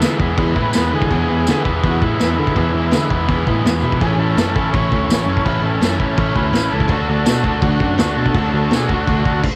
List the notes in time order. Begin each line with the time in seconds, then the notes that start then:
Already playing: E4 G#4 B4
0.01 D3 E3 G#3 B3 E4, snare, tambourine, crash
0.19 E2 E3 G#3 B3 E4, kick
0.37 E2 E3 G#3 B3 E4, kick, crash
0.55 A2 E3 G#3 B3 E4 B4, kick
0.73 E2 E3 G#3 B3 E4, snare, tambourine, crash
0.92 D3 G#3 B3 E4 G#4
1.02 kick
1.09 E2 E3 G#3 B3 E4 G#4, kick, crash
1.14 B4
1.28 E2 G#3 B3 E4
1.46 D3 E3 G#3 B3 E4, snare, tambourine, crash
1.64 E2 E3 G#3 B3 E4, kick
1.83 E2 E3 G#3 B3 E4, kick, crash
1.87 F#4
2.01 A2 E3 G#3 B3 E4, kick
2.19 E2 E3 G#3 B3 E4, snare, tambourine, crash
2.37 D3 G#3 B3 E4
2.47 kick
2.55 E2 E3 G#3 B3 E4, kick, crash
2.74 E2 G#3 B3 E4
2.91 D3 E3 G#3 B3 E4, snare, tambourine, crash
3.10 E2 E3 G#3 B3 E4, kick
3.28 E2 E3 G#3 B3 E4, kick, crash
3.47 A2 E3 G#3 B3 E4, kick
3.64 E2 E3 G#3 B3 E4, snare, tambourine, crash
3.69 G#5
3.83 B2 G#3 B3 E4 E5
3.92 kick
4.00 A1 A2 E3 A3 C#4 E4 G#4, kick, crash
4.04 E4 A4 C#5
4.18 A1 A3 C#4 E4 A4
4.36 F#2 E3 A3 C#4 E4, snare, tambourine, crash
4.55 A1 A2 E3 A3 C#4 E4, kick
4.72 A1 E3 A3 C#4 C#5, kick, crash
4.76 E4
4.91 D2 A2 E3 A3 C#4 E4, kick
5.07 A1 E3 A3 C#5, snare, tambourine, crash
5.12 C#4 E4
5.26 F#2 C#4 E4
5.30 A3
5.37 kick
5.44 A1 A2 E3 A3 C#4 E4 B4, kick, crash
5.62 A1 C#4 E4 A4
5.66 A3
5.81 F#2 E3 A3 C#4 E4, snare, tambourine, crash
5.99 A1 A2 E3 A3 C#4 E4, kick
6.17 A1 E3 A3 C#4 E4, kick, crash
6.35 D2 A2 E3 A3 C#4 E4 B4, kick
6.53 A1 E3 A3 C#4, snare, tambourine, crash
6.57 E4
6.72 C#2 A3 C#4 E4 A4
6.80 kick
6.88 D2 D3 A3 F#4, kick, crash
6.92 D4 F#4 A4 D5
7.09 D2 A3 D4 F#4
7.26 B2 D3 A3 D4 F#4, snare, tambourine, crash
7.44 D2 D3 A3 D4 F#4, kick
7.60 D2 D3 A3 D4 F#4, kick, crash
7.80 F#2 D3 A3 D4 F#4, kick
7.98 D2 D3 A3 D4 F#4, snare, tambourine, crash
8.16 B2 A3 D4 F#4 A4
8.26 kick
8.34 D2 D3 A3 D4 F#4, kick, crash
8.52 D2 A3 D4 F#4
8.71 B2 D3 A3 D4 F#4, snare, tambourine, crash
8.75 G#4
8.89 D2 D3 A3 D4 F#4, kick
8.93 F#4
9.06 D2 D3 A3 D4 F#4, kick, crash
9.24 D3 A3 D4 F#4, kick
9.43 kick, crash